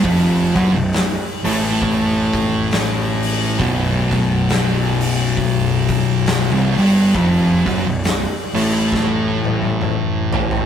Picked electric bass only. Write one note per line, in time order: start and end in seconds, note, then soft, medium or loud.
0.04 0.52 F1 loud
0.56 0.73 F#1 medium
0.75 1.16 B0 medium
1.45 3.56 A1 loud
3.60 6.48 B0 loud
6.51 6.75 C1 loud
6.77 7.12 G1 loud
7.15 7.63 F1 medium
7.66 7.84 F#1 medium
7.85 8.26 B0 medium
8.55 10.66 A1 loud